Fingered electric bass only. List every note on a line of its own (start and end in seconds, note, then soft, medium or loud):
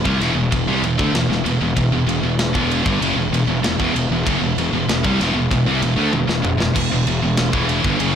0.06 0.20 C2 loud
0.20 0.34 E1 medium
0.35 0.50 E1 medium
0.52 0.67 E1 medium
0.67 0.82 C2 medium
0.82 0.97 E1 medium
0.99 1.12 D2 medium
1.13 1.28 E1 medium
1.30 1.44 E1 medium
1.45 1.60 E1 medium
1.61 1.76 E1 medium
1.77 1.91 E1 medium
1.92 2.06 E1 medium
2.07 2.22 E1 medium
2.23 2.52 E1 medium
2.56 2.84 E1 loud
2.86 3.00 G1 medium
3.02 3.16 F#1 loud
3.16 3.30 E1 medium
3.31 3.46 E1 medium
3.48 3.62 E1 medium
3.64 3.78 E1 medium
3.80 3.94 E1 medium
3.96 4.10 E1 medium
4.11 4.25 E1 medium
4.27 4.41 F#1 medium
4.42 4.56 E1 medium
4.57 4.72 E1 medium
4.73 4.88 E1 medium
4.89 5.04 E1 medium
5.05 5.19 C2 loud
5.19 5.34 E1 medium
5.35 5.50 E1 medium
5.51 5.66 E1 medium
5.67 5.81 C2 medium
5.82 5.96 E1 medium
5.97 6.12 D2 loud
6.13 6.28 E1 medium
6.28 6.43 E1 medium
6.43 6.58 E1 medium
6.60 6.75 E1 medium
6.76 6.90 E1 medium
6.92 7.06 E1 medium
7.07 7.21 E1 medium
7.24 7.52 E1 medium
7.53 7.82 E1 loud
7.84 7.99 G1 medium
8.00 8.15 F#1 medium